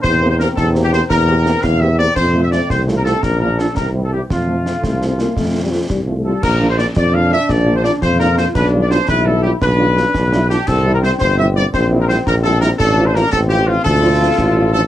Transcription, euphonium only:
\new Staff \with { instrumentName = "Euphonium" } { \time 6/8 \key f \major \tempo 4. = 113 r2. | r2. | r2. | r2. |
r4. a8. c'16 bes8 | a8. g16 f8 g8. a16 g8 | r2. | r2. |
r2. | r2. | r2. | r2. |
r2. | r2. | }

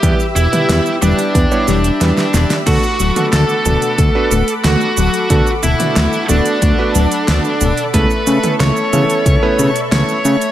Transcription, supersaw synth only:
\new Staff \with { instrumentName = "Supersaw synth" } { \time 4/4 \key d \major \tempo 4 = 91 << { <e'' b'' e'''>1 | <fis'' d'''>1~ | <fis'' d'''>1 | <e'' b'' cis'''>1 | } \\ { g'1 | a'1~ | a'1~ | a'1 | } >> }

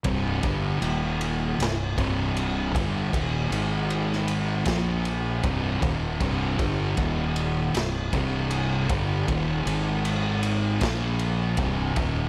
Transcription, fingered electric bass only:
\new Staff \with { instrumentName = "Fingered electric bass" } { \clef bass \time 4/4 \key c \minor \tempo 4 = 78 c,,8 g,,8 ees,,4 c,,8 c,,4 g,,8 | ees,,8 aes,,4. bes,,4 c,,8 ees,,8 | c,,8 g,,8 ees,,4 c,,8 c,,4 g,,8 | ees,,8 aes,,4. bes,,4 c,,8 ees,,8 | }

